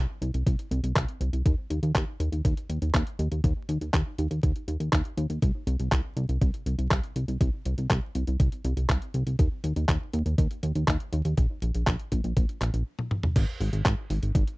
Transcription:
0.22 analog synth bass C2, closed hi-hat
0.34 analog synth bass C2, closed hi-hat
0.46 analog synth bass C2, kick, closed hi-hat
0.59 closed hi-hat
0.71 analog synth bass C2, closed hi-hat
0.83 analog synth bass C2, closed hi-hat
0.96 analog synth bass C2, kick, clap, closed hi-hat
1.09 closed hi-hat
1.21 analog synth bass C2, closed hi-hat
1.33 analog synth bass C2, closed hi-hat
1.46 analog synth bass D#2, kick, closed hi-hat
1.70 analog synth bass D#2, closed hi-hat
1.83 analog synth bass D#2, closed hi-hat
1.95 analog synth bass D#2, kick, clap, closed hi-hat
2.20 analog synth bass D#2, closed hi-hat
2.32 analog synth bass D#2, closed hi-hat
2.45 analog synth bass D#2, kick, closed hi-hat
2.57 closed hi-hat
2.69 analog synth bass D#2, closed hi-hat
2.82 analog synth bass D#2, closed hi-hat
2.94 analog synth bass D#2, kick, clap, closed hi-hat
3.07 closed hi-hat
3.19 analog synth bass D#2, closed hi-hat
3.31 analog synth bass D#2, closed hi-hat
3.44 analog synth bass D#2, kick, closed hi-hat
3.69 analog synth bass D#2, closed hi-hat
3.81 analog synth bass D#2, closed hi-hat
3.94 analog synth bass D#2, kick, clap, closed hi-hat
4.18 analog synth bass D#2, closed hi-hat
4.31 analog synth bass D#2, closed hi-hat
4.43 analog synth bass D#2, kick, closed hi-hat
4.56 closed hi-hat
4.68 analog synth bass D#2, closed hi-hat
4.80 analog synth bass D#2, closed hi-hat
4.93 analog synth bass D#2, kick, clap, closed hi-hat
5.05 closed hi-hat
5.17 analog synth bass D#2, closed hi-hat
5.30 analog synth bass D#2, closed hi-hat
5.42 analog synth bass C2, kick, closed hi-hat
5.67 analog synth bass C2, closed hi-hat
5.79 analog synth bass C2, closed hi-hat
5.92 analog synth bass C2, kick, clap, closed hi-hat
6.16 analog synth bass C2, closed hi-hat
6.29 analog synth bass C2, closed hi-hat
6.41 analog synth bass C2, kick, closed hi-hat
6.54 closed hi-hat
6.66 analog synth bass C2, closed hi-hat
6.79 analog synth bass C2, closed hi-hat
6.91 analog synth bass C2, kick, clap, closed hi-hat
7.04 closed hi-hat
7.16 analog synth bass C2, closed hi-hat
7.28 analog synth bass C2, closed hi-hat
7.41 analog synth bass C2, kick, closed hi-hat
7.65 analog synth bass C2, closed hi-hat
7.78 analog synth bass C2, closed hi-hat
7.90 analog synth bass C2, kick, clap, closed hi-hat
8.15 analog synth bass C2, closed hi-hat
8.27 analog synth bass C2, closed hi-hat
8.40 analog synth bass C2, kick, closed hi-hat
8.52 closed hi-hat
8.65 analog synth bass C2, closed hi-hat
8.77 analog synth bass C2, closed hi-hat
8.89 analog synth bass C2, kick, clap, closed hi-hat
9.02 closed hi-hat
9.14 analog synth bass C2, closed hi-hat
9.27 analog synth bass C2, closed hi-hat
9.39 analog synth bass D#2, kick, closed hi-hat
9.64 analog synth bass D#2, closed hi-hat
9.76 analog synth bass D#2, closed hi-hat
9.89 analog synth bass D#2, kick, clap, closed hi-hat
10.13 analog synth bass D#2, closed hi-hat
10.26 analog synth bass D#2, closed hi-hat
10.38 analog synth bass D#2, kick, closed hi-hat
10.51 closed hi-hat
10.63 analog synth bass D#2, closed hi-hat
10.75 analog synth bass D#2, closed hi-hat
10.88 analog synth bass D#2, kick, clap, closed hi-hat
11.00 closed hi-hat
11.13 analog synth bass D#2, closed hi-hat
11.25 analog synth bass D#2, closed hi-hat
11.37 analog synth bass A#1, kick, closed hi-hat
11.62 analog synth bass A#1, closed hi-hat
11.75 analog synth bass A#1, closed hi-hat
11.87 analog synth bass A#1, kick, clap, closed hi-hat
11.99 closed hi-hat
12.12 analog synth bass A#1, kick, closed hi-hat
12.24 analog synth bass A#1, closed hi-hat
12.37 analog synth bass A#1, kick, closed hi-hat
12.49 closed hi-hat
12.61 analog synth bass A#1, clap, closed hi-hat
12.74 analog synth bass A#1, closed hi-hat
12.99 high tom
13.11 mid tom
13.23 mid tom
13.36 analog synth bass G#1, kick, closed hi-hat, crash
13.60 analog synth bass G#1, open hi-hat
13.73 analog synth bass G#1, closed hi-hat
13.85 analog synth bass G#1, kick, clap, closed hi-hat
14.10 analog synth bass G#1, open hi-hat
14.22 analog synth bass G#1, closed hi-hat
14.35 analog synth bass G#1, kick, closed hi-hat
14.47 closed hi-hat

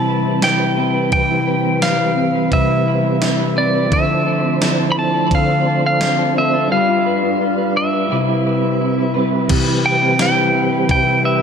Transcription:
Already playing: clean electric guitar C3 E3 G3 C4 E4 B4, tonewheel organ E3 G3 C4 B4, pedal steel guitar A5
0.08 clean electric guitar B4
0.25 clean electric guitar C4
0.42 clean electric guitar E4, pedal steel guitar G5, snare, ride, tambourine
0.60 clean electric guitar B4
0.76 clean electric guitar G3 C4 E4 B4
0.95 clean electric guitar B4
1.10 clean electric guitar C3 E3 G3 C4, pedal steel guitar G5, kick, ride
1.16 clean electric guitar B4
1.31 clean electric guitar E4
1.47 clean electric guitar B4
1.65 clean electric guitar C4
1.82 pedal steel guitar F5, snare, ride, tambourine
1.99 clean electric guitar B4
2.17 clean electric guitar C4
2.35 clean electric guitar B4
2.50 clean electric guitar C3 G3 C4 E4 B4, pedal steel guitar E5, kick, ride
2.69 clean electric guitar E4
2.87 clean electric guitar B4
3.04 clean electric guitar C4
3.21 clean electric guitar E4, snare, ride, tambourine
3.39 clean electric guitar B4
3.55 clean electric guitar G3 C4 E4 B4, pedal steel guitar D5
3.74 clean electric guitar B4
3.90 clean electric guitar D3 F3 A3 C4, tonewheel organ F3 C4 D4 C5, pedal steel guitar E5, kick, ride
3.95 clean electric guitar E4 A4
4.10 clean electric guitar E4
4.26 clean electric guitar A4
4.44 clean electric guitar C4
4.62 clean electric guitar E4, snare, ride, tambourine
4.79 clean electric guitar A4
4.92 pedal steel guitar B5
4.97 clean electric guitar C4, pedal steel guitar A5
5.14 clean electric guitar A4
5.30 clean electric guitar D3 A3 C4 A4, kick, ride
5.35 pedal steel guitar F5
5.66 clean electric guitar A4
5.83 clean electric guitar C4, pedal steel guitar F5
6.01 snare, ride, tambourine
6.18 clean electric guitar A4
6.34 clean electric guitar A3 C4 E4 A4
6.38 pedal steel guitar E5
6.54 clean electric guitar A4
6.68 clean electric guitar G3 D4 F4, tonewheel organ G3 F4 B4
6.72 clean electric guitar B4, pedal steel guitar F5
6.89 clean electric guitar F4
7.06 clean electric guitar B4
7.23 clean electric guitar D4
7.41 clean electric guitar F4
7.58 clean electric guitar B4
7.76 clean electric guitar D4, pedal steel guitar E5
7.94 clean electric guitar B4
8.08 clean electric guitar C3 G3 C4 E4 B4, tonewheel organ G3 C4 E4
8.29 clean electric guitar E4
8.46 clean electric guitar B4
8.64 clean electric guitar C4
8.81 clean electric guitar E4
8.98 clean electric guitar B4
9.14 clean electric guitar G3 C4 E4 B4
9.33 clean electric guitar B4
9.48 clean electric guitar C3 E3 G3 C4, tonewheel organ G3 C4 G4 B4, kick, crash, ride
9.52 clean electric guitar E4 B4
9.68 clean electric guitar E4
9.85 clean electric guitar B4, pedal steel guitar G5
10.03 clean electric guitar C4
10.19 clean electric guitar E4, pedal steel guitar G5, snare, ride, tambourine
10.37 clean electric guitar B4
10.54 clean electric guitar C4
10.71 clean electric guitar B4
10.88 clean electric guitar C3 G3 C4 E4 B4, pedal steel guitar G5, kick, ride
11.07 clean electric guitar E4
11.24 clean electric guitar B4, pedal steel guitar E5

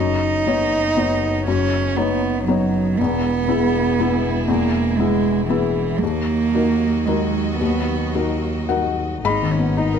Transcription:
Already playing: double bass F#1, felt piano F#2, string section B3 D#4 C#5, cello D#4
0.47 felt piano B3 D#4 C#5
0.97 felt piano B3 D#4 C#5
1.47 felt piano F#2, cello C#4
1.97 felt piano B3 D#4 C#5, cello B3
2.45 cello F#3, felt piano B3 D#4 C#5
2.98 double bass E1, felt piano E2, string section G#3 E4 G#4, cello B3
3.48 felt piano B3 E4 G#4
4.00 felt piano B3 E4 G#4
4.48 felt piano E2, cello A#3
4.98 cello G#3, felt piano B3 E4 G#4
5.47 cello E3, felt piano B3 E4 G#4
6.00 double bass D#2, felt piano D#2, string section F#3 F#4 D#5, cello A#3
6.55 felt piano D#4 F#4 A#4
7.05 cello G#3, felt piano D#4 F#4 A#4
7.57 felt piano D#2, cello B3
8.14 cello A#3, felt piano D#4 F#4 A#4
8.69 felt piano D#4 F#4 A#4 F#5
9.24 double bass G#1, felt piano G#2 B5, string section B3 D#4 D#5, cello D#4
9.43 felt piano D#3
9.52 cello C#4
9.59 felt piano B3
9.77 felt piano D#4, cello D#4
9.94 felt piano A#4

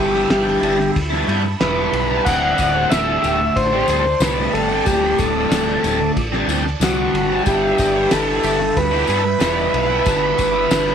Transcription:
Already playing: overdriven electric guitar G2 D3 G3 B3 D4 E4, transistor combo organ G4, string machine E5 A5 B5
0.00 fingered electric bass G1
0.14 overdriven electric guitar G3 B3 D4 E4, snare
0.29 fingered electric bass G1, overdriven electric guitar G2 D3 G3 B3 D4 E4, snare, ride
0.47 snare
0.62 fingered electric bass G1, overdriven electric guitar G3 B3 D4 E4, ride
0.79 muted overdriven electric guitar stroke, snare
0.96 fingered electric bass D2, kick, ride
1.10 overdriven electric guitar G3 B3 D4 E4, snare
1.27 fingered electric bass G2, overdriven electric guitar G3 B3 D4 E4, ride
1.45 muted overdriven electric guitar stroke
1.60 fingered electric bass E1, overdriven electric guitar G2 D3 G3 B3 D4 E4, transistor combo organ B4, snare, ride
1.77 overdriven electric guitar G3 B3 D4 E4
1.92 fingered electric bass B1, ride
2.09 overdriven electric guitar G3 B3 D4 E4
2.25 fingered electric bass D1, overdriven electric guitar D2 A2 D3 G3, string machine D5 A5, transistor combo organ F#5, kick, tambourine, crash
2.29 overdriven electric guitar C4
2.58 fingered electric bass D1, kick, ride, tambourine
2.74 overdriven electric guitar D3 G3 C4
2.90 fingered electric bass D1, overdriven electric guitar D2 A2 D3 G3 C4, transistor combo organ E5, snare, ride, tambourine
3.22 fingered electric bass D1, overdriven electric guitar A2 D3 G3 C4, ride, tambourine
3.41 muted overdriven electric guitar stroke
3.56 fingered electric bass A1, transistor combo organ C5, kick, ride, tambourine
3.72 overdriven electric guitar D3 G3 C4
3.88 fingered electric bass D2, overdriven electric guitar A2 D3 G3 C4, ride, tambourine
4.05 muted overdriven electric guitar stroke
4.20 fingered electric bass C2, overdriven electric guitar D2 A2 D3 G3 C4, transistor combo organ B4, snare, ride, tambourine
4.36 overdriven electric guitar D3 G3 C4
4.53 fingered electric bass G1, transistor combo organ A4, ride
4.69 overdriven electric guitar D3 G3 C4
4.86 fingered electric bass D1, overdriven electric guitar D2 A2 D3 G3 C4, transistor combo organ G4, kick, ride, tambourine
5.19 fingered electric bass D1, transistor combo organ A4, kick, ride, tambourine
5.36 overdriven electric guitar D3 G3 C4
5.50 fingered electric bass D1, overdriven electric guitar D2 A2 D3 G3 C4, snare, ride, tambourine
5.68 snare
5.83 fingered electric bass D1, overdriven electric guitar A2 D3 G3 C4, ride, tambourine
6.01 muted overdriven electric guitar stroke
6.16 fingered electric bass A1, kick, ride, tambourine
6.32 overdriven electric guitar D3 G3 C4, snare
6.47 fingered electric bass D2, overdriven electric guitar A2 D3 G3 C4, ride, tambourine
6.65 muted overdriven electric guitar stroke, snare
6.80 fingered electric bass C2, overdriven electric guitar D2 A2 D3 G3 C4, transistor combo organ F#4, snare, ride, tambourine
6.98 overdriven electric guitar D3 G3 C4
7.13 fingered electric bass G1, ride
7.30 overdriven electric guitar D3 G3 C4
7.45 fingered electric bass G1, overdriven electric guitar G2 D3 G3 B3 D4 E4, transistor combo organ G4, string machine E5 G5 B5, kick, ride, tambourine
7.78 fingered electric bass G1, kick, ride, tambourine
7.94 overdriven electric guitar G3 B3 D4 E4
8.10 fingered electric bass G1, overdriven electric guitar G2 D3 G3 B3 D4 E4, transistor combo organ A4, snare, ride, tambourine
8.42 fingered electric bass G1, overdriven electric guitar G3 B3 D4 E4, ride, tambourine
8.60 muted overdriven electric guitar stroke, snare
8.76 fingered electric bass D2, transistor combo organ B4, kick, ride, tambourine
8.91 overdriven electric guitar G3 B3 D4 E4
9.07 fingered electric bass G2, overdriven electric guitar G3 B3 D4 E4, ride, tambourine
9.23 muted overdriven electric guitar stroke
9.39 fingered electric bass E1, overdriven electric guitar G2 D3 G3 B3 D4 E4, snare, ride, tambourine
9.54 overdriven electric guitar G3 B3 D4 E4
9.73 fingered electric bass B1, ride
9.88 overdriven electric guitar G3 B3 D4 E4
10.04 fingered electric bass G1, overdriven electric guitar G2 D3 G3 B3 D4 E4, kick, ride, tambourine
10.08 string machine F#5
10.38 fingered electric bass G1, kick, ride, tambourine
10.54 overdriven electric guitar G3 B3 D4 E4
10.69 fingered electric bass G1, overdriven electric guitar G2 D3 G3 B3 D4 E4, snare, ride, tambourine
10.87 snare

